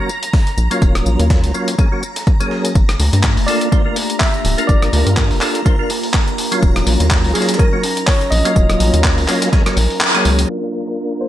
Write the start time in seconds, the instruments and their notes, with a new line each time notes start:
Already playing: string machine A#5
0.00 tonewheel organ F#3 A#3 C#4 F#4
0.09 tambourine
0.23 closed hi-hat
0.33 kick, snare, open hi-hat
0.47 closed hi-hat
0.58 analog synth bass A#1, tambourine
0.70 tonewheel organ F#3 A#3 C#4 F4, closed hi-hat
0.82 analog synth bass D#1, kick, tambourine
0.95 cross-stick, closed hi-hat
1.06 analog synth bass A#1, tambourine
1.19 analog synth bass D#2, closed hi-hat
1.30 kick, snare, tambourine
1.44 analog synth bass C#2, snare, closed hi-hat
1.54 tonewheel organ F#3 A#3 C#4 F4, tambourine
1.68 closed hi-hat
1.78 tonewheel organ F#3 A#3 C#4 G#4, kick, tambourine
1.92 tonewheel organ F#3 A#3 C#4 F#4
2.03 tambourine
2.16 snare, closed hi-hat
2.27 kick, tambourine
2.40 tonewheel organ F#3 A#3 C#4 G#4, closed hi-hat, tambourine
2.51 snare
2.65 closed hi-hat, tambourine
2.75 analog synth bass G1, ambient pad A3 A#3 D4 F4 G4, string machine A#5, kick, tambourine
2.89 cross-stick, snare, closed hi-hat
3.00 analog synth bass D2, open hi-hat, tambourine
3.13 analog synth bass G2, snare, closed hi-hat
3.23 kick, snare, clap, tambourine
3.37 analog synth bass F1, snare, open hi-hat
3.47 tonewheel organ A#3 D4 F4 A4, tine electric piano D5, open hi-hat, tambourine
3.61 closed hi-hat
3.72 tonewheel organ A#3 D4 F4 C5, kick, tambourine
3.85 tonewheel organ A#3 D4 F4 A#4
3.96 open hi-hat, tambourine
4.10 closed hi-hat
4.19 tine electric piano E5, kick, snare, clap, open hi-hat
4.34 closed hi-hat
4.45 analog synth bass D1, open hi-hat, tambourine
4.58 tonewheel organ A#3 D4 F4 A#4, closed hi-hat
4.67 analog synth bass G1, ambient pad A#4, tine electric piano D5, kick, tambourine
4.82 cross-stick, closed hi-hat
4.93 analog synth bass D2, open hi-hat, tambourine
5.05 analog synth bass G2, tine electric piano A#4, closed hi-hat
5.17 kick, snare, clap, tambourine
5.31 analog synth bass F1, snare, open hi-hat
5.41 tonewheel organ A#3 D4 F4 A4, clap, open hi-hat, tambourine
5.55 closed hi-hat
5.65 tonewheel organ A#3 D4 F4 C5, kick, tambourine
5.79 tonewheel organ A#3 D4 F4 A#4
5.90 open hi-hat, tambourine
6.03 open hi-hat
6.14 kick, snare, clap, tambourine
6.28 closed hi-hat
6.38 open hi-hat, tambourine
6.51 tonewheel organ F#3 A#3 C#4 F4, closed hi-hat
6.62 analog synth bass D#1, ambient pad F#3 C#4 D#4, kick, tambourine
6.76 cross-stick, snare, closed hi-hat
6.87 analog synth bass A#1, open hi-hat, tambourine
7.00 analog synth bass D#2, snare, closed hi-hat
7.10 kick, snare, clap, tambourine
7.24 analog synth bass C#2, snare, open hi-hat
7.34 tonewheel organ F#3 A#3 C#4 F4, tine electric piano G#4, open hi-hat, tambourine
7.42 snare, tambourine
7.49 snare, closed hi-hat, tambourine
7.54 snare, tambourine
7.58 tonewheel organ F#3 A#3 C#4 G#4, tine electric piano A#4, kick, tambourine
7.72 tonewheel organ F#3 A#3 C#4 F#4
7.83 open hi-hat, tambourine
7.97 closed hi-hat
8.06 tine electric piano C#5, kick, snare, clap, open hi-hat
8.21 closed hi-hat
8.31 analog synth bass A#1, tine electric piano D#5, open hi-hat, tambourine
8.45 tonewheel organ F#3 A#3 C#4 F4, closed hi-hat
8.56 analog synth bass D#1, kick, tambourine
8.70 cross-stick, closed hi-hat
8.80 analog synth bass A#1, open hi-hat, tambourine
8.94 analog synth bass D#2, closed hi-hat
9.04 kick, snare, clap, tambourine
9.18 analog synth bass C#2, snare, open hi-hat
9.28 tonewheel organ F#3 A#3 C#4 F4, snare, clap, open hi-hat, tambourine
9.42 snare, closed hi-hat, tambourine
9.52 tonewheel organ F#3 A#3 C#4 G#4, kick, snare, tambourine
9.66 tonewheel organ F#3 A#3 C#4 F#4, cross-stick, snare, closed hi-hat, tambourine
9.77 analog synth bass A#1, open hi-hat, tambourine
9.90 open hi-hat
10.01 snare, clap, open hi-hat
10.14 tonewheel organ F#3 A#3 C#4 G#4, closed hi-hat
10.25 analog synth bass C#2, open hi-hat, tambourine
10.39 closed hi-hat, open hi-hat
10.49 tonewheel organ A#3 D4 F4 A#4, ambient pad A#3 D4 F4 G4 A#4, string machine A#5, crash
10.63 closed hi-hat
10.87 closed hi-hat
11.11 closed hi-hat
11.21 tine electric piano C5